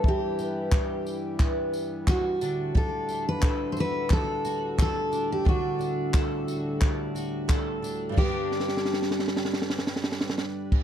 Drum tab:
CC |--------------------------------|--------------------------------|--------------------------------|x-----------------------------x-|
TB |----x-------x-------x-------x---|----x-------x-------x-------x---|----x-------x-------x-------x---|--------------------------------|
CP |--------x-------x-------x-------|--------x-------x-------x-------|--------x-------x-------x-------|--------------------------------|
SD |--------------------------------|--------------------------------|--------------------------------|----ooooooooooooooooooooooo-----|
BD |o-------o-------o-------o-------|o-------o-------o-------o-------|o-------o-------o-------o-------|o-----------------------------o-|